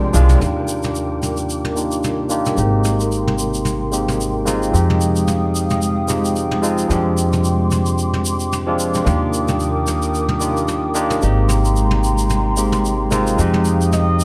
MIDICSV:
0, 0, Header, 1, 7, 480
1, 0, Start_track
1, 0, Key_signature, -3, "major"
1, 0, Tempo, 540541
1, 367, Time_signature, 4, 2, 24, 8
1, 12645, End_track
2, 0, Start_track
2, 0, Title_t, "Analog synth pad"
2, 0, Program_c, 0, 89
2, 0, Note_on_c, 0, 56, 85
2, 0, Note_on_c, 0, 74, 76
2, 0, Note_on_c, 0, 79, 76
2, 0, Note_on_c, 0, 84, 86
2, 331, Note_off_c, 0, 79, 0
2, 334, Note_off_c, 0, 56, 0
2, 345, Note_off_c, 0, 84, 0
2, 346, Note_off_c, 0, 74, 0
2, 365, Note_on_c, 0, 70, 72
2, 365, Note_on_c, 0, 86, 89
2, 367, Note_on_c, 0, 79, 69
2, 2267, Note_off_c, 0, 86, 0
2, 2288, Note_on_c, 0, 84, 86
2, 4170, Note_off_c, 0, 70, 0
2, 4188, Note_off_c, 0, 84, 0
2, 4211, Note_on_c, 0, 56, 78
2, 4212, Note_on_c, 0, 77, 70
2, 4213, Note_on_c, 0, 87, 84
2, 6110, Note_off_c, 0, 77, 0
2, 6111, Note_off_c, 0, 87, 0
2, 6128, Note_on_c, 0, 84, 66
2, 6129, Note_on_c, 0, 86, 91
2, 8011, Note_off_c, 0, 79, 0
2, 8013, Note_off_c, 0, 56, 0
2, 8028, Note_off_c, 0, 84, 0
2, 8049, Note_on_c, 0, 70, 78
2, 8049, Note_on_c, 0, 79, 71
2, 8049, Note_on_c, 0, 87, 82
2, 9932, Note_off_c, 0, 86, 0
2, 9948, Note_off_c, 0, 70, 0
2, 9949, Note_off_c, 0, 79, 0
2, 9949, Note_off_c, 0, 87, 0
2, 9966, Note_on_c, 0, 56, 73
2, 9966, Note_on_c, 0, 79, 67
2, 9967, Note_on_c, 0, 84, 92
2, 9968, Note_on_c, 0, 82, 71
2, 11867, Note_off_c, 0, 79, 0
2, 11867, Note_off_c, 0, 84, 0
2, 11868, Note_off_c, 0, 82, 0
2, 11882, Note_on_c, 0, 79, 74
2, 11884, Note_on_c, 0, 77, 72
2, 11885, Note_on_c, 0, 87, 84
2, 12645, Note_off_c, 0, 56, 0
2, 12645, Note_off_c, 0, 77, 0
2, 12645, Note_off_c, 0, 79, 0
2, 12645, Note_off_c, 0, 87, 0
2, 12645, End_track
3, 0, Start_track
3, 0, Title_t, "Muted trumpet"
3, 0, Program_c, 1, 59
3, 12376, Note_on_c, 1, 75, 91
3, 12645, Note_off_c, 1, 75, 0
3, 12645, End_track
4, 0, Start_track
4, 0, Title_t, "Synth texture"
4, 0, Program_c, 2, 99
4, 0, Note_on_c, 2, 70, 79
4, 0, Note_on_c, 2, 79, 83
4, 375, Note_off_c, 2, 79, 0
4, 377, Note_off_c, 2, 70, 0
4, 12645, End_track
5, 0, Start_track
5, 0, Title_t, "Tine electric piano"
5, 0, Program_c, 3, 4
5, 0, Control_c, 3, 64, 127
5, 0, Note_on_c, 3, 53, 68
5, 0, Note_on_c, 3, 56, 64
5, 0, Note_on_c, 3, 60, 65
5, 0, Note_on_c, 3, 62, 64
5, 0, Note_on_c, 3, 67, 79
5, 0, Note_on_c, 3, 79, 87
5, 97, Note_off_c, 3, 53, 0
5, 98, Note_off_c, 3, 56, 0
5, 101, Note_off_c, 3, 60, 0
5, 103, Note_off_c, 3, 62, 0
5, 106, Note_off_c, 3, 67, 0
5, 118, Note_on_c, 3, 53, 101
5, 122, Note_on_c, 3, 56, 89
5, 128, Note_on_c, 3, 60, 84
5, 134, Note_on_c, 3, 62, 85
5, 137, Note_on_c, 3, 65, 105
5, 337, Note_off_c, 3, 53, 0
5, 339, Note_off_c, 3, 56, 0
5, 342, Note_off_c, 3, 60, 0
5, 345, Note_off_c, 3, 62, 0
5, 346, Note_on_c, 3, 58, 68
5, 347, Note_off_c, 3, 65, 0
5, 357, Note_on_c, 3, 62, 61
5, 366, Note_on_c, 3, 63, 64
5, 378, Control_c, 3, 64, 0
5, 379, Note_on_c, 3, 65, 66
5, 386, Note_off_c, 3, 79, 0
5, 388, Note_on_c, 3, 67, 79
5, 515, Control_c, 3, 64, 127
5, 1531, Note_off_c, 3, 58, 0
5, 1537, Note_off_c, 3, 62, 0
5, 1541, Note_off_c, 3, 63, 0
5, 1547, Note_off_c, 3, 65, 0
5, 1552, Note_off_c, 3, 67, 0
5, 1556, Note_on_c, 3, 58, 62
5, 1561, Note_on_c, 3, 62, 55
5, 1567, Note_on_c, 3, 63, 56
5, 1570, Note_on_c, 3, 65, 54
5, 1577, Note_on_c, 3, 67, 65
5, 2016, Note_off_c, 3, 58, 0
5, 2019, Note_off_c, 3, 62, 0
5, 2022, Note_off_c, 3, 63, 0
5, 2023, Note_off_c, 3, 65, 0
5, 2027, Note_off_c, 3, 67, 0
5, 2036, Note_on_c, 3, 58, 81
5, 2039, Note_on_c, 3, 62, 70
5, 2046, Note_on_c, 3, 63, 76
5, 2049, Note_on_c, 3, 65, 74
5, 2055, Note_on_c, 3, 67, 94
5, 2256, Note_off_c, 3, 58, 0
5, 2258, Note_off_c, 3, 62, 0
5, 2261, Note_off_c, 3, 63, 0
5, 2263, Note_off_c, 3, 65, 0
5, 2263, Note_on_c, 3, 56, 70
5, 2266, Note_off_c, 3, 67, 0
5, 2271, Note_on_c, 3, 58, 62
5, 2280, Note_on_c, 3, 60, 68
5, 2293, Note_on_c, 3, 63, 63
5, 2299, Control_c, 3, 64, 0
5, 2302, Note_on_c, 3, 67, 78
5, 2449, Control_c, 3, 64, 127
5, 3450, Note_off_c, 3, 56, 0
5, 3454, Note_off_c, 3, 58, 0
5, 3458, Note_off_c, 3, 60, 0
5, 3464, Note_off_c, 3, 63, 0
5, 3469, Note_off_c, 3, 67, 0
5, 3475, Note_on_c, 3, 56, 59
5, 3479, Note_on_c, 3, 58, 54
5, 3484, Note_on_c, 3, 60, 53
5, 3488, Note_on_c, 3, 63, 56
5, 3493, Note_on_c, 3, 67, 64
5, 3935, Note_off_c, 3, 56, 0
5, 3937, Note_off_c, 3, 58, 0
5, 3940, Note_off_c, 3, 60, 0
5, 3942, Note_off_c, 3, 63, 0
5, 3945, Note_off_c, 3, 67, 0
5, 3953, Note_on_c, 3, 56, 81
5, 3959, Note_on_c, 3, 58, 78
5, 3964, Note_on_c, 3, 60, 79
5, 3970, Note_on_c, 3, 63, 74
5, 3974, Note_on_c, 3, 65, 92
5, 4175, Note_off_c, 3, 56, 0
5, 4177, Note_off_c, 3, 58, 0
5, 4180, Note_off_c, 3, 60, 0
5, 4183, Note_off_c, 3, 63, 0
5, 4184, Note_on_c, 3, 53, 70
5, 4185, Note_off_c, 3, 65, 0
5, 4194, Note_on_c, 3, 56, 64
5, 4202, Note_on_c, 3, 60, 62
5, 4214, Note_on_c, 3, 63, 63
5, 4218, Control_c, 3, 64, 0
5, 4222, Note_on_c, 3, 67, 84
5, 4357, Control_c, 3, 64, 127
5, 5370, Note_off_c, 3, 53, 0
5, 5375, Note_off_c, 3, 56, 0
5, 5379, Note_off_c, 3, 60, 0
5, 5385, Note_off_c, 3, 63, 0
5, 5389, Note_off_c, 3, 67, 0
5, 5396, Note_on_c, 3, 53, 60
5, 5400, Note_on_c, 3, 56, 57
5, 5406, Note_on_c, 3, 60, 55
5, 5408, Note_on_c, 3, 63, 57
5, 5415, Note_on_c, 3, 67, 66
5, 5856, Note_off_c, 3, 53, 0
5, 5858, Note_off_c, 3, 56, 0
5, 5861, Note_off_c, 3, 60, 0
5, 5862, Note_off_c, 3, 63, 0
5, 5866, Note_off_c, 3, 67, 0
5, 5876, Note_on_c, 3, 53, 85
5, 5880, Note_on_c, 3, 56, 73
5, 5887, Note_on_c, 3, 60, 79
5, 5891, Note_on_c, 3, 63, 81
5, 5895, Note_on_c, 3, 65, 89
5, 6096, Note_off_c, 3, 53, 0
5, 6098, Note_off_c, 3, 56, 0
5, 6101, Note_off_c, 3, 60, 0
5, 6104, Note_off_c, 3, 63, 0
5, 6106, Note_off_c, 3, 65, 0
5, 6108, Note_on_c, 3, 53, 70
5, 6117, Note_on_c, 3, 56, 63
5, 6126, Note_on_c, 3, 60, 63
5, 6137, Control_c, 3, 64, 0
5, 6137, Note_on_c, 3, 62, 70
5, 6147, Note_on_c, 3, 67, 74
5, 6270, Control_c, 3, 64, 127
5, 7292, Note_off_c, 3, 53, 0
5, 7297, Note_off_c, 3, 56, 0
5, 7301, Note_off_c, 3, 60, 0
5, 7307, Note_off_c, 3, 62, 0
5, 7312, Note_off_c, 3, 67, 0
5, 7692, Note_on_c, 3, 53, 80
5, 7697, Note_on_c, 3, 56, 69
5, 7703, Note_on_c, 3, 60, 70
5, 7707, Note_on_c, 3, 62, 69
5, 7712, Note_on_c, 3, 65, 86
5, 8016, Note_off_c, 3, 53, 0
5, 8019, Note_off_c, 3, 56, 0
5, 8022, Note_off_c, 3, 60, 0
5, 8024, Note_off_c, 3, 62, 0
5, 8026, Note_off_c, 3, 65, 0
5, 8026, Note_on_c, 3, 58, 70
5, 8036, Note_on_c, 3, 62, 63
5, 8047, Note_on_c, 3, 63, 66
5, 8057, Note_on_c, 3, 65, 63
5, 8058, Control_c, 3, 64, 0
5, 8066, Note_on_c, 3, 67, 77
5, 8195, Control_c, 3, 64, 127
5, 9211, Note_off_c, 3, 58, 0
5, 9216, Note_off_c, 3, 62, 0
5, 9221, Note_off_c, 3, 63, 0
5, 9227, Note_off_c, 3, 65, 0
5, 9231, Note_off_c, 3, 67, 0
5, 9235, Note_on_c, 3, 58, 59
5, 9239, Note_on_c, 3, 62, 53
5, 9243, Note_on_c, 3, 63, 53
5, 9249, Note_on_c, 3, 65, 56
5, 9255, Note_on_c, 3, 67, 67
5, 9695, Note_off_c, 3, 58, 0
5, 9698, Note_off_c, 3, 62, 0
5, 9700, Note_off_c, 3, 63, 0
5, 9703, Note_off_c, 3, 65, 0
5, 9705, Note_off_c, 3, 67, 0
5, 9716, Note_on_c, 3, 58, 83
5, 9722, Note_on_c, 3, 62, 78
5, 9725, Note_on_c, 3, 63, 72
5, 9732, Note_on_c, 3, 65, 75
5, 9737, Note_on_c, 3, 67, 88
5, 9936, Note_off_c, 3, 58, 0
5, 9939, Note_off_c, 3, 62, 0
5, 9940, Note_off_c, 3, 63, 0
5, 9944, Note_off_c, 3, 65, 0
5, 9946, Note_off_c, 3, 67, 0
5, 9946, Note_on_c, 3, 56, 72
5, 9957, Note_on_c, 3, 58, 62
5, 9967, Note_on_c, 3, 60, 68
5, 9976, Note_on_c, 3, 63, 65
5, 9980, Control_c, 3, 64, 0
5, 9987, Note_on_c, 3, 67, 78
5, 10116, Control_c, 3, 64, 127
5, 11131, Note_off_c, 3, 56, 0
5, 11137, Note_off_c, 3, 58, 0
5, 11141, Note_off_c, 3, 60, 0
5, 11146, Note_off_c, 3, 63, 0
5, 11151, Note_off_c, 3, 67, 0
5, 11156, Note_on_c, 3, 56, 61
5, 11163, Note_on_c, 3, 58, 56
5, 11165, Note_on_c, 3, 60, 58
5, 11171, Note_on_c, 3, 63, 55
5, 11177, Note_on_c, 3, 67, 66
5, 11616, Note_off_c, 3, 56, 0
5, 11619, Note_off_c, 3, 58, 0
5, 11621, Note_off_c, 3, 60, 0
5, 11624, Note_off_c, 3, 63, 0
5, 11627, Note_off_c, 3, 67, 0
5, 11638, Note_on_c, 3, 56, 85
5, 11642, Note_on_c, 3, 58, 82
5, 11649, Note_on_c, 3, 60, 78
5, 11651, Note_on_c, 3, 63, 79
5, 11658, Note_on_c, 3, 65, 95
5, 11857, Note_off_c, 3, 56, 0
5, 11859, Note_off_c, 3, 58, 0
5, 11862, Note_off_c, 3, 60, 0
5, 11864, Note_off_c, 3, 63, 0
5, 11867, Note_off_c, 3, 65, 0
5, 11867, Note_on_c, 3, 53, 75
5, 11878, Note_on_c, 3, 56, 70
5, 11887, Note_on_c, 3, 60, 66
5, 11898, Note_on_c, 3, 63, 69
5, 11900, Control_c, 3, 64, 0
5, 11908, Note_on_c, 3, 67, 79
5, 12076, Control_c, 3, 64, 127
5, 12645, Note_off_c, 3, 53, 0
5, 12645, Note_off_c, 3, 56, 0
5, 12645, Note_off_c, 3, 60, 0
5, 12645, Note_off_c, 3, 63, 0
5, 12645, Note_off_c, 3, 67, 0
5, 12645, End_track
6, 0, Start_track
6, 0, Title_t, "Upright bass"
6, 0, Program_c, 4, 32
6, 127, Note_on_c, 4, 36, 84
6, 292, Note_off_c, 4, 36, 0
6, 367, Note_on_c, 4, 39, 69
6, 2266, Note_off_c, 4, 39, 0
6, 2285, Note_on_c, 4, 32, 80
6, 4185, Note_off_c, 4, 32, 0
6, 4206, Note_on_c, 4, 41, 71
6, 6105, Note_off_c, 4, 41, 0
6, 6125, Note_on_c, 4, 41, 75
6, 8025, Note_off_c, 4, 41, 0
6, 8049, Note_on_c, 4, 39, 77
6, 9947, Note_off_c, 4, 39, 0
6, 9969, Note_on_c, 4, 32, 72
6, 11867, Note_off_c, 4, 32, 0
6, 11885, Note_on_c, 4, 41, 80
6, 12645, Note_off_c, 4, 41, 0
6, 12645, End_track
7, 0, Start_track
7, 0, Title_t, "Drums"
7, 127, Note_on_c, 9, 82, 89
7, 216, Note_off_c, 9, 82, 0
7, 257, Note_on_c, 9, 42, 68
7, 261, Note_on_c, 9, 45, 82
7, 264, Note_on_c, 9, 82, 52
7, 346, Note_off_c, 9, 42, 0
7, 350, Note_off_c, 9, 45, 0
7, 353, Note_off_c, 9, 82, 0
7, 365, Note_on_c, 9, 45, 64
7, 371, Note_on_c, 9, 82, 52
7, 454, Note_off_c, 9, 45, 0
7, 460, Note_off_c, 9, 82, 0
7, 605, Note_on_c, 9, 82, 76
7, 694, Note_off_c, 9, 82, 0
7, 736, Note_on_c, 9, 82, 38
7, 748, Note_on_c, 9, 45, 67
7, 825, Note_off_c, 9, 82, 0
7, 837, Note_off_c, 9, 45, 0
7, 846, Note_on_c, 9, 82, 50
7, 935, Note_off_c, 9, 82, 0
7, 1089, Note_on_c, 9, 45, 56
7, 1092, Note_on_c, 9, 82, 66
7, 1177, Note_off_c, 9, 45, 0
7, 1180, Note_off_c, 9, 82, 0
7, 1217, Note_on_c, 9, 82, 39
7, 1306, Note_off_c, 9, 82, 0
7, 1330, Note_on_c, 9, 82, 53
7, 1419, Note_off_c, 9, 82, 0
7, 1462, Note_on_c, 9, 45, 71
7, 1551, Note_off_c, 9, 45, 0
7, 1571, Note_on_c, 9, 82, 72
7, 1660, Note_off_c, 9, 82, 0
7, 1701, Note_on_c, 9, 82, 46
7, 1790, Note_off_c, 9, 82, 0
7, 1810, Note_on_c, 9, 82, 47
7, 1813, Note_on_c, 9, 45, 65
7, 1899, Note_off_c, 9, 82, 0
7, 1902, Note_off_c, 9, 45, 0
7, 2043, Note_on_c, 9, 82, 71
7, 2132, Note_off_c, 9, 82, 0
7, 2182, Note_on_c, 9, 82, 47
7, 2187, Note_on_c, 9, 45, 65
7, 2271, Note_off_c, 9, 82, 0
7, 2276, Note_off_c, 9, 45, 0
7, 2287, Note_on_c, 9, 82, 55
7, 2375, Note_off_c, 9, 82, 0
7, 2527, Note_on_c, 9, 82, 76
7, 2528, Note_on_c, 9, 45, 57
7, 2616, Note_off_c, 9, 82, 0
7, 2617, Note_off_c, 9, 45, 0
7, 2666, Note_on_c, 9, 82, 45
7, 2754, Note_off_c, 9, 82, 0
7, 2769, Note_on_c, 9, 82, 44
7, 2858, Note_off_c, 9, 82, 0
7, 2908, Note_on_c, 9, 45, 64
7, 2996, Note_off_c, 9, 45, 0
7, 3008, Note_on_c, 9, 82, 75
7, 3097, Note_off_c, 9, 82, 0
7, 3144, Note_on_c, 9, 82, 43
7, 3232, Note_off_c, 9, 82, 0
7, 3241, Note_on_c, 9, 45, 64
7, 3250, Note_on_c, 9, 82, 53
7, 3330, Note_off_c, 9, 45, 0
7, 3339, Note_off_c, 9, 82, 0
7, 3489, Note_on_c, 9, 82, 72
7, 3578, Note_off_c, 9, 82, 0
7, 3626, Note_on_c, 9, 45, 63
7, 3634, Note_on_c, 9, 82, 43
7, 3714, Note_off_c, 9, 45, 0
7, 3723, Note_off_c, 9, 82, 0
7, 3737, Note_on_c, 9, 82, 48
7, 3826, Note_off_c, 9, 82, 0
7, 3971, Note_on_c, 9, 82, 79
7, 3972, Note_on_c, 9, 45, 68
7, 4060, Note_off_c, 9, 82, 0
7, 4061, Note_off_c, 9, 45, 0
7, 4109, Note_on_c, 9, 82, 38
7, 4198, Note_off_c, 9, 82, 0
7, 4215, Note_on_c, 9, 82, 58
7, 4304, Note_off_c, 9, 82, 0
7, 4350, Note_on_c, 9, 45, 70
7, 4439, Note_off_c, 9, 45, 0
7, 4449, Note_on_c, 9, 82, 71
7, 4538, Note_off_c, 9, 82, 0
7, 4581, Note_on_c, 9, 82, 46
7, 4669, Note_off_c, 9, 82, 0
7, 4685, Note_on_c, 9, 45, 69
7, 4688, Note_on_c, 9, 82, 48
7, 4774, Note_off_c, 9, 45, 0
7, 4777, Note_off_c, 9, 82, 0
7, 4932, Note_on_c, 9, 82, 82
7, 5020, Note_off_c, 9, 82, 0
7, 5065, Note_on_c, 9, 45, 64
7, 5066, Note_on_c, 9, 82, 41
7, 5154, Note_off_c, 9, 45, 0
7, 5154, Note_off_c, 9, 82, 0
7, 5168, Note_on_c, 9, 82, 56
7, 5256, Note_off_c, 9, 82, 0
7, 5403, Note_on_c, 9, 82, 82
7, 5412, Note_on_c, 9, 45, 65
7, 5492, Note_off_c, 9, 82, 0
7, 5501, Note_off_c, 9, 45, 0
7, 5548, Note_on_c, 9, 82, 47
7, 5637, Note_off_c, 9, 82, 0
7, 5648, Note_on_c, 9, 82, 51
7, 5737, Note_off_c, 9, 82, 0
7, 5783, Note_on_c, 9, 45, 66
7, 5872, Note_off_c, 9, 45, 0
7, 5893, Note_on_c, 9, 82, 85
7, 5981, Note_off_c, 9, 82, 0
7, 6021, Note_on_c, 9, 82, 46
7, 6110, Note_off_c, 9, 82, 0
7, 6130, Note_on_c, 9, 45, 64
7, 6133, Note_on_c, 9, 82, 48
7, 6219, Note_off_c, 9, 45, 0
7, 6222, Note_off_c, 9, 82, 0
7, 6374, Note_on_c, 9, 82, 72
7, 6462, Note_off_c, 9, 82, 0
7, 6508, Note_on_c, 9, 45, 61
7, 6509, Note_on_c, 9, 82, 39
7, 6597, Note_off_c, 9, 45, 0
7, 6598, Note_off_c, 9, 82, 0
7, 6609, Note_on_c, 9, 82, 51
7, 6698, Note_off_c, 9, 82, 0
7, 6849, Note_on_c, 9, 82, 69
7, 6851, Note_on_c, 9, 45, 63
7, 6938, Note_off_c, 9, 82, 0
7, 6940, Note_off_c, 9, 45, 0
7, 6979, Note_on_c, 9, 82, 41
7, 7068, Note_off_c, 9, 82, 0
7, 7090, Note_on_c, 9, 82, 49
7, 7179, Note_off_c, 9, 82, 0
7, 7224, Note_on_c, 9, 45, 63
7, 7313, Note_off_c, 9, 45, 0
7, 7328, Note_on_c, 9, 82, 77
7, 7417, Note_off_c, 9, 82, 0
7, 7458, Note_on_c, 9, 82, 47
7, 7546, Note_off_c, 9, 82, 0
7, 7572, Note_on_c, 9, 45, 66
7, 7574, Note_on_c, 9, 82, 55
7, 7661, Note_off_c, 9, 45, 0
7, 7663, Note_off_c, 9, 82, 0
7, 7809, Note_on_c, 9, 82, 83
7, 7898, Note_off_c, 9, 82, 0
7, 7940, Note_on_c, 9, 82, 43
7, 7946, Note_on_c, 9, 45, 59
7, 8029, Note_off_c, 9, 82, 0
7, 8034, Note_off_c, 9, 45, 0
7, 8048, Note_on_c, 9, 45, 69
7, 8053, Note_on_c, 9, 82, 48
7, 8137, Note_off_c, 9, 45, 0
7, 8142, Note_off_c, 9, 82, 0
7, 8291, Note_on_c, 9, 82, 66
7, 8380, Note_off_c, 9, 82, 0
7, 8421, Note_on_c, 9, 82, 43
7, 8423, Note_on_c, 9, 45, 76
7, 8510, Note_off_c, 9, 82, 0
7, 8512, Note_off_c, 9, 45, 0
7, 8524, Note_on_c, 9, 82, 50
7, 8613, Note_off_c, 9, 82, 0
7, 8765, Note_on_c, 9, 82, 64
7, 8769, Note_on_c, 9, 45, 64
7, 8854, Note_off_c, 9, 82, 0
7, 8858, Note_off_c, 9, 45, 0
7, 8901, Note_on_c, 9, 82, 39
7, 8989, Note_off_c, 9, 82, 0
7, 9010, Note_on_c, 9, 82, 48
7, 9099, Note_off_c, 9, 82, 0
7, 9132, Note_on_c, 9, 45, 71
7, 9221, Note_off_c, 9, 45, 0
7, 9243, Note_on_c, 9, 82, 79
7, 9331, Note_off_c, 9, 82, 0
7, 9386, Note_on_c, 9, 82, 40
7, 9474, Note_off_c, 9, 82, 0
7, 9485, Note_on_c, 9, 82, 50
7, 9486, Note_on_c, 9, 45, 68
7, 9574, Note_off_c, 9, 82, 0
7, 9575, Note_off_c, 9, 45, 0
7, 9725, Note_on_c, 9, 82, 83
7, 9814, Note_off_c, 9, 82, 0
7, 9859, Note_on_c, 9, 45, 70
7, 9866, Note_on_c, 9, 82, 43
7, 9947, Note_off_c, 9, 45, 0
7, 9955, Note_off_c, 9, 82, 0
7, 9964, Note_on_c, 9, 82, 53
7, 10053, Note_off_c, 9, 82, 0
7, 10201, Note_on_c, 9, 45, 68
7, 10211, Note_on_c, 9, 82, 70
7, 10290, Note_off_c, 9, 45, 0
7, 10300, Note_off_c, 9, 82, 0
7, 10345, Note_on_c, 9, 82, 49
7, 10434, Note_off_c, 9, 82, 0
7, 10446, Note_on_c, 9, 82, 48
7, 10535, Note_off_c, 9, 82, 0
7, 10574, Note_on_c, 9, 45, 67
7, 10663, Note_off_c, 9, 45, 0
7, 10691, Note_on_c, 9, 82, 69
7, 10780, Note_off_c, 9, 82, 0
7, 10817, Note_on_c, 9, 82, 49
7, 10906, Note_off_c, 9, 82, 0
7, 10922, Note_on_c, 9, 45, 64
7, 10923, Note_on_c, 9, 82, 49
7, 11011, Note_off_c, 9, 45, 0
7, 11012, Note_off_c, 9, 82, 0
7, 11163, Note_on_c, 9, 82, 74
7, 11251, Note_off_c, 9, 82, 0
7, 11298, Note_on_c, 9, 45, 70
7, 11305, Note_on_c, 9, 82, 44
7, 11387, Note_off_c, 9, 45, 0
7, 11394, Note_off_c, 9, 82, 0
7, 11412, Note_on_c, 9, 82, 46
7, 11501, Note_off_c, 9, 82, 0
7, 11647, Note_on_c, 9, 82, 75
7, 11648, Note_on_c, 9, 45, 76
7, 11736, Note_off_c, 9, 82, 0
7, 11737, Note_off_c, 9, 45, 0
7, 11782, Note_on_c, 9, 82, 45
7, 11871, Note_off_c, 9, 82, 0
7, 11890, Note_on_c, 9, 82, 48
7, 11979, Note_off_c, 9, 82, 0
7, 12020, Note_on_c, 9, 45, 72
7, 12109, Note_off_c, 9, 45, 0
7, 12121, Note_on_c, 9, 82, 72
7, 12210, Note_off_c, 9, 82, 0
7, 12265, Note_on_c, 9, 82, 43
7, 12354, Note_off_c, 9, 82, 0
7, 12367, Note_on_c, 9, 45, 78
7, 12368, Note_on_c, 9, 82, 52
7, 12456, Note_off_c, 9, 45, 0
7, 12457, Note_off_c, 9, 82, 0
7, 12608, Note_on_c, 9, 82, 67
7, 12645, Note_off_c, 9, 82, 0
7, 12645, End_track
0, 0, End_of_file